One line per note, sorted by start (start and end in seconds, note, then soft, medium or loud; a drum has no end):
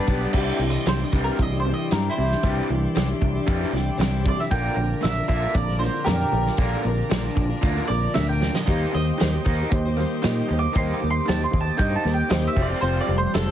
0.00 0.33 G3 medium
0.00 0.34 D4 medium
0.00 0.30 G4 medium
0.00 0.34 G4 medium
0.00 0.31 D5 medium
0.00 0.31 B5 medium
0.07 0.25 B1 medium
0.07 0.22 G3 medium
0.07 0.34 B3 medium
0.07 0.21 B3 medium
0.07 kick medium
0.07 closed hi-hat medium
0.11 0.21 D4 medium
0.11 0.19 G4 medium
0.20 0.35 B3 soft
0.20 0.34 D4 medium
0.20 0.34 G4 medium
0.24 0.34 G3 soft
0.32 0.50 C2 medium
0.32 0.58 C3 medium
0.32 0.60 C3 medium
0.32 0.59 E3 medium
0.32 0.59 G3 medium
0.32 0.60 G3 medium
0.32 0.61 D4 medium
0.32 4.46 E4 medium
0.32 0.61 E4 medium
0.32 4.46 D5 medium
0.32 4.46 C6 medium
0.32 kick medium
0.32 crash medium
0.37 0.62 G4 medium
0.59 0.76 C2 medium
0.59 0.84 C3 medium
0.59 0.84 E3 medium
0.59 0.87 G3 medium
0.59 0.88 D4 soft
0.59 0.88 E4 medium
0.65 0.88 G4 medium
0.70 0.87 D#5 medium
0.86 1.03 C2 medium
0.86 1.10 C3 medium
0.86 1.00 C3 medium
0.86 1.10 E3 medium
0.86 1.01 G3 medium
0.86 1.01 D4 medium
0.86 0.99 G4 medium
0.86 1.03 C5 medium
0.86 snare loud
0.86 closed hi-hat medium
0.90 1.01 E4 medium
1.00 1.27 D4 soft
1.00 1.26 E4 soft
1.00 1.25 G4 medium
1.00 1.21 D#5 medium
1.12 1.29 C2 medium
1.12 1.36 C3 medium
1.12 1.37 E3 medium
1.12 1.37 G3 medium
1.12 kick medium
1.12 snare soft
1.24 1.53 E4 soft
1.24 1.51 G4 soft
1.24 1.40 A#4 medium
1.29 1.53 D4 soft
1.38 1.71 C2 medium
1.38 1.62 C3 medium
1.38 1.62 E3 medium
1.38 kick medium
1.38 closed hi-hat medium
1.42 1.57 D#5 medium
1.52 1.66 D4 soft
1.52 1.66 E4 soft
1.52 1.65 G4 medium
1.60 1.73 C5 medium
1.65 1.88 C3 medium
1.65 1.88 E3 medium
1.65 1.90 G3 medium
1.65 1.91 D4 medium
1.65 1.91 E4 medium
1.69 1.92 G4 medium
1.74 1.90 D#5 medium
1.91 2.08 G2 medium
1.91 2.17 C3 medium
1.91 2.15 C3 medium
1.91 2.15 E3 medium
1.91 2.16 G3 medium
1.91 2.17 D4 medium
1.91 2.18 E4 medium
1.91 2.18 G4 medium
1.91 2.08 A#4 medium
1.91 snare medium
1.91 closed hi-hat medium
2.09 2.57 E4 medium
2.09 2.60 C5 medium
2.17 2.34 C2 medium
2.17 2.40 C3 medium
2.17 2.41 E3 medium
2.17 2.30 G3 soft
2.17 2.30 D4 medium
2.17 2.31 E4 medium
2.17 2.32 G4 medium
2.31 2.45 E4 soft
2.31 2.44 G4 soft
2.31 snare soft
2.36 2.45 D4 soft
2.43 2.59 C2 medium
2.43 2.67 C3 medium
2.43 2.70 C3 medium
2.43 2.67 E3 medium
2.43 2.68 G3 medium
2.43 2.70 G3 medium
2.43 2.70 D4 medium
2.43 2.70 E4 medium
2.43 2.71 G4 medium
2.43 kick medium
2.43 closed hi-hat medium
2.70 2.86 C2 medium
2.70 2.93 C3 medium
2.70 2.93 E3 medium
2.70 2.95 G3 medium
2.70 2.96 D4 medium
2.70 2.96 E4 medium
2.74 2.97 G4 medium
2.95 3.12 C2 medium
2.95 3.08 C3 medium
2.95 3.18 C3 medium
2.95 3.19 E3 medium
2.95 3.08 G3 medium
2.95 3.09 D4 medium
2.95 3.09 E4 medium
2.95 3.07 G4 loud
2.95 snare loud
2.95 closed hi-hat medium
3.08 3.35 D4 soft
3.08 3.35 E4 medium
3.08 3.34 G4 medium
3.21 3.38 C2 medium
3.21 3.44 C3 medium
3.21 3.45 E3 medium
3.21 kick medium
3.35 3.61 D4 soft
3.35 3.61 E4 soft
3.35 3.59 G4 medium
3.46 3.63 F2 loud
3.46 3.71 C3 medium
3.46 3.71 E3 medium
3.46 3.71 G3 medium
3.46 kick loud
3.46 closed hi-hat medium
3.60 3.73 D4 soft
3.60 3.73 E4 medium
3.60 3.73 G4 medium
3.72 3.89 C2 medium
3.72 3.96 C3 medium
3.72 3.97 E3 medium
3.72 3.97 G3 medium
3.72 3.98 D4 medium
3.72 3.97 E4 medium
3.72 3.98 G4 medium
3.72 snare soft
3.97 4.31 C2 medium
3.97 4.24 C3 medium
3.97 4.22 C3 medium
3.97 4.23 E3 medium
3.97 4.22 G3 medium
3.97 4.23 D4 medium
3.97 4.24 E4 medium
3.97 4.24 G4 loud
3.97 snare medium
3.97 closed hi-hat medium
4.23 4.49 C3 medium
4.23 4.49 E3 medium
4.23 4.37 G3 medium
4.23 4.38 D4 medium
4.23 4.37 E4 medium
4.23 4.35 G4 medium
4.23 kick medium
4.28 4.39 D5 medium
4.37 4.50 D4 soft
4.37 4.51 E4 soft
4.37 4.50 G4 soft
4.37 4.50 E5 medium
4.37 snare soft
4.50 4.68 A#1 medium
4.50 4.76 A#2 medium
4.50 4.75 A#2 medium
4.50 4.77 D3 medium
4.50 4.75 D3 medium
4.50 4.74 F3 medium
4.50 4.76 A#3 medium
4.50 4.76 A#3 loud
4.50 4.76 D4 medium
4.50 8.64 F4 medium
4.50 4.77 A#4 medium
4.50 8.64 D5 medium
4.50 5.01 G5 medium
4.50 8.64 A#5 medium
4.50 kick loud
4.50 closed hi-hat medium
4.76 4.93 A#1 medium
4.76 5.00 A#2 medium
4.76 5.00 D3 medium
4.76 5.02 F3 medium
4.76 5.02 A#3 medium
4.76 5.02 D4 medium
4.76 5.02 A#4 medium
5.01 5.20 A#1 medium
5.01 5.25 A#2 medium
5.01 5.15 A#2 medium
5.01 5.26 D3 medium
5.01 5.16 D3 medium
5.01 5.16 F3 medium
5.01 5.16 A#3 medium
5.01 5.16 D4 medium
5.01 5.16 A#4 medium
5.01 5.27 E5 medium
5.01 closed hi-hat medium
5.05 snare loud
5.18 5.44 F3 soft
5.18 5.44 A#3 soft
5.18 5.43 D4 soft
5.18 5.43 A#4 medium
5.28 5.45 A#1 medium
5.28 5.53 A#2 medium
5.28 5.53 D3 loud
5.28 5.53 A#3 loud
5.28 5.54 E5 medium
5.28 kick medium
5.44 5.70 F3 soft
5.44 5.70 A#3 soft
5.44 5.69 D4 soft
5.44 5.68 A#4 soft
5.54 5.88 A#1 medium
5.54 5.78 A#2 medium
5.54 5.78 D3 medium
5.54 5.78 D5 medium
5.54 kick loud
5.54 closed hi-hat medium
5.69 5.83 F3 soft
5.69 5.83 A#3 soft
5.69 5.82 D4 soft
5.69 5.81 A#4 soft
5.79 6.04 A#2 medium
5.79 6.04 D3 medium
5.79 6.05 C5 medium
5.79 snare soft
5.84 6.08 F3 medium
5.84 6.08 A#3 medium
5.84 6.09 D4 medium
5.84 6.08 A#4 medium
6.04 6.23 F2 medium
6.04 6.30 A#2 medium
6.04 6.33 A#2 medium
6.04 6.30 D3 medium
6.04 6.33 D3 medium
6.04 7.58 G4 medium
6.04 7.59 A#4 medium
6.04 snare loud
6.04 closed hi-hat medium
6.09 6.33 F3 medium
6.09 6.34 A#3 medium
6.09 6.34 D4 medium
6.09 6.34 A#4 medium
6.32 6.49 A#1 medium
6.32 6.56 A#2 medium
6.32 6.56 D3 medium
6.32 6.46 F3 medium
6.32 6.47 A#3 medium
6.32 6.46 D4 medium
6.37 6.45 A#4 medium
6.46 6.60 F3 soft
6.46 6.60 A#3 soft
6.46 6.60 D4 soft
6.46 6.59 A#4 soft
6.46 snare soft
6.57 6.75 A#1 medium
6.57 6.83 A#2 medium
6.57 6.86 A#2 medium
6.57 6.83 D3 medium
6.57 6.86 D3 medium
6.57 6.85 F3 medium
6.57 6.83 A#3 medium
6.57 kick loud
6.57 closed hi-hat medium
6.61 6.86 A#3 medium
6.61 6.86 D4 medium
6.61 6.87 A#4 medium
6.85 7.01 A#1 medium
6.85 7.08 A#2 medium
6.85 7.09 D3 medium
6.85 7.12 F3 medium
6.85 7.12 A#3 medium
6.85 7.13 D4 medium
6.85 7.12 A#4 medium
7.10 7.27 A#1 medium
7.10 7.34 A#2 medium
7.10 7.25 A#2 medium
7.10 7.34 D3 medium
7.10 7.25 D3 medium
7.10 7.25 F3 loud
7.10 7.24 A#3 loud
7.10 7.24 A#4 medium
7.10 snare loud
7.10 closed hi-hat medium
7.14 7.24 D4 medium
7.25 7.51 F3 soft
7.25 7.50 A#3 soft
7.25 7.49 D4 medium
7.25 7.48 A#4 medium
7.35 7.53 A#1 medium
7.35 7.60 A#2 medium
7.35 7.60 D3 medium
7.35 kick medium
7.50 7.77 F3 soft
7.50 7.77 A#3 soft
7.50 7.76 D4 medium
7.50 7.76 A#4 medium
7.62 7.79 D2 medium
7.62 7.87 A#2 medium
7.62 7.87 D3 medium
7.62 7.87 A#3 medium
7.62 kick loud
7.62 closed hi-hat medium
7.77 7.89 F3 soft
7.77 7.91 A#3 soft
7.77 7.90 D4 soft
7.77 7.90 A#4 medium
7.88 8.06 A#1 medium
7.88 8.12 A#2 medium
7.88 8.12 D3 medium
7.88 8.15 F3 medium
7.88 8.14 D5 medium
7.92 8.16 A#3 medium
7.92 8.16 D4 medium
7.92 8.17 A#4 medium
8.14 8.49 D2 medium
8.14 8.38 A#2 medium
8.14 8.41 A#2 medium
8.14 8.38 D3 medium
8.14 8.42 D3 medium
8.14 8.41 F3 medium
8.14 8.42 A#3 medium
8.14 8.42 D4 medium
8.14 8.43 A#4 medium
8.14 8.27 E5 medium
8.14 snare loud
8.14 closed hi-hat medium
8.29 8.54 G5 medium
8.41 8.64 A#2 medium
8.41 8.65 D3 medium
8.41 8.55 F3 medium
8.41 8.56 A#3 medium
8.41 8.56 D4 medium
8.41 snare medium
8.45 8.55 A#4 medium
8.55 8.69 F3 soft
8.55 8.68 A#3 soft
8.55 8.69 D4 soft
8.55 8.68 A#4 soft
8.55 8.92 D#5 medium
8.55 snare medium
8.66 8.84 D#2 medium
8.66 8.91 D#3 medium
8.66 8.94 D#3 medium
8.66 8.93 G3 medium
8.66 8.91 A#3 medium
8.66 8.94 A#3 medium
8.66 8.91 D#4 medium
8.66 9.15 D#4 medium
8.66 12.54 G4 medium
8.66 9.15 G4 medium
8.66 12.54 D#5 medium
8.66 10.74 C6 medium
8.66 kick medium
8.66 closed hi-hat medium
8.70 8.95 G4 medium
8.70 8.95 C5 medium
8.70 9.15 C5 medium
8.92 9.10 D#2 medium
8.92 9.16 D#3 medium
8.92 9.19 G3 medium
8.92 9.16 A#3 medium
8.92 9.20 A#3 medium
8.92 9.44 D#5 medium
8.96 9.20 G4 medium
8.96 9.21 C5 medium
9.18 9.37 D#2 medium
9.18 9.42 D#3 medium
9.18 9.32 D#3 medium
9.18 9.33 G3 medium
9.18 9.42 A#3 medium
9.18 9.33 A#3 medium
9.18 9.66 D#4 medium
9.18 9.67 G4 medium
9.18 9.33 G4 medium
9.18 9.67 C5 medium
9.18 snare loud
9.18 closed hi-hat medium
9.22 9.31 C5 medium
9.32 9.60 A#3 soft
9.32 9.59 G4 soft
9.32 9.58 C5 medium
9.45 9.62 D#2 medium
9.45 9.69 D#3 medium
9.45 9.69 A#3 medium
9.45 9.70 D#4 loud
9.45 kick medium
9.61 9.86 A#3 soft
9.61 9.86 G4 soft
9.61 9.84 C5 medium
9.70 10.04 D#2 medium
9.70 9.94 D#3 medium
9.70 9.94 A#3 medium
9.70 10.18 D#4 medium
9.70 10.19 G4 medium
9.70 10.19 C5 medium
9.70 kick loud
9.70 closed hi-hat medium
9.85 9.97 A#3 soft
9.85 9.98 G4 medium
9.85 9.98 C5 medium
9.97 10.21 D#3 medium
9.97 10.24 G3 medium
9.97 10.20 A#3 medium
9.97 10.24 A#3 medium
9.97 10.24 G4 medium
9.97 10.25 C5 medium
10.22 10.40 A#2 medium
10.22 10.46 D#3 medium
10.22 10.50 D#3 medium
10.22 10.49 G3 medium
10.22 10.46 A#3 medium
10.22 10.50 A#3 medium
10.22 10.70 D#4 medium
10.22 10.70 G4 medium
10.22 10.50 G4 loud
10.22 10.71 D#5 medium
10.22 snare medium
10.22 closed hi-hat medium
10.27 10.51 C5 medium
10.48 10.66 D#2 medium
10.48 10.71 D#3 medium
10.48 10.63 G3 soft
10.48 10.72 A#3 medium
10.48 10.63 A#3 medium
10.52 10.62 G4 medium
10.52 10.60 C5 medium
10.59 10.75 C5 soft
10.59 10.75 D6 loud
10.64 10.77 A#3 soft
10.64 10.76 G4 soft
10.73 10.92 D#2 medium
10.73 10.98 D#3 medium
10.73 10.98 A#3 medium
10.73 10.99 D#4 medium
10.73 11.23 D#4 medium
10.73 10.93 C6 loud
10.73 12.56 D6 medium
10.73 kick loud
10.73 closed hi-hat medium
10.77 11.02 D#3 medium
10.77 11.02 G3 medium
10.77 11.03 A#3 medium
10.77 11.23 G4 medium
10.77 11.03 G4 medium
10.77 11.03 C5 medium
10.77 11.24 C5 loud
10.94 11.10 D6 medium
10.99 11.19 D#2 medium
10.99 11.24 D#3 medium
10.99 11.24 A#3 medium
11.04 11.27 G3 soft
11.04 11.28 A#3 medium
11.04 11.28 G4 medium
11.04 11.28 C5 medium
11.10 11.27 C6 medium
11.25 11.44 D#2 medium
11.25 11.50 D#3 medium
11.25 11.40 D#3 medium
11.25 11.41 G3 medium
11.25 11.50 A#3 medium
11.25 11.41 A#3 medium
11.25 11.74 D#4 medium
11.25 11.75 G4 medium
11.25 11.75 C5 medium
11.25 11.39 C5 medium
11.25 11.43 A5 medium
11.25 snare loud
11.25 closed hi-hat medium
11.30 11.40 G4 medium
11.40 11.66 A#3 soft
11.40 11.64 G4 medium
11.40 11.63 C5 medium
11.40 11.60 C6 medium
11.51 11.70 D#2 medium
11.51 11.75 D#3 medium
11.51 11.76 A#3 medium
11.51 kick medium
11.60 11.77 A5 medium
11.65 11.91 A#3 soft
11.65 11.89 G4 soft
11.65 11.88 C5 soft
11.77 11.96 G2 medium
11.77 12.03 D#3 medium
11.77 12.03 A#3 medium
11.77 12.03 D#4 loud
11.77 12.26 D#4 medium
11.77 12.26 G4 medium
11.77 12.27 D#5 medium
11.77 11.95 G5 loud
11.77 kick loud
11.77 closed hi-hat medium
11.89 12.04 A#3 soft
11.89 12.04 G4 medium
11.89 12.04 C5 medium
11.96 12.13 A5 medium
12.04 12.21 D#2 medium
12.04 12.28 D#3 medium
12.04 12.29 G3 medium
12.04 12.28 A#3 medium
12.04 12.29 A#3 medium
12.04 12.29 G4 medium
12.04 12.31 C5 medium
12.04 snare soft
12.14 12.31 G5 medium
12.29 12.47 D#2 medium
12.29 12.54 D#3 medium
12.29 12.57 D#3 medium
12.29 12.56 G3 medium
12.29 12.54 A#3 medium
12.29 12.57 A#3 medium
12.29 12.56 D#4 medium
12.29 12.57 G4 medium
12.29 12.56 G4 medium
12.29 12.57 C5 medium
12.29 12.58 C5 medium
12.29 12.48 D#5 medium
12.29 snare loud
12.29 closed hi-hat medium
12.47 12.65 E5 medium
12.56 12.73 F1 medium
12.56 12.81 F3 medium
12.56 12.70 F3 medium
12.56 12.81 G3 medium
12.56 12.81 C4 medium
12.56 12.69 C4 medium
12.56 13.28 F4 medium
12.56 13.51 G4 medium
12.56 12.67 G4 medium
12.56 13.28 G4 medium
12.56 12.66 C5 medium
12.56 13.51 F5 medium
12.56 13.51 C6 medium
12.56 kick loud
12.60 13.29 C5 medium
12.60 12.81 D5 medium
12.68 12.80 C4 soft
12.68 12.81 G4 medium
12.68 12.81 C5 medium
12.81 12.99 F1 medium
12.81 13.05 F3 medium
12.81 13.07 F3 medium
12.81 13.07 G3 medium
12.81 13.06 C4 medium
12.81 13.07 C4 loud
12.81 13.06 G4 medium
12.81 12.99 C5 medium
12.81 13.08 C5 medium
12.81 closed hi-hat medium
13.01 13.17 D5 medium
13.06 13.25 F1 medium
13.06 13.34 F3 medium
13.06 13.32 F3 medium
13.06 13.32 G3 medium
13.06 13.34 C4 medium
13.06 13.34 G4 medium
13.06 13.35 C5 medium
13.18 13.34 C5 medium
13.34 13.51 F1 loud
13.34 13.51 F3 medium
13.34 13.48 F3 medium
13.34 13.51 G3 medium
13.34 13.48 C4 medium
13.34 13.51 F4 medium
13.34 13.51 G4 medium
13.34 13.47 G4 medium
13.34 13.51 A4 loud
13.34 13.51 C5 medium
13.34 13.46 C5 medium
13.34 snare loud
13.34 closed hi-hat medium
13.47 13.51 G4 medium
13.47 13.51 C5 medium